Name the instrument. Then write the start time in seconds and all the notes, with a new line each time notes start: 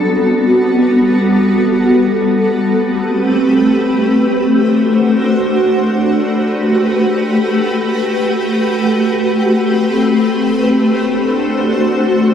ambient pad
Already playing: G3 B3 F#4 A4
2.55 A3 C4 G4 B4
4.19 D4 F#4 C5
5.84 A3 F#4 G4 B4
9.12 A3 C4 B4
10.77 D4 F#4 C5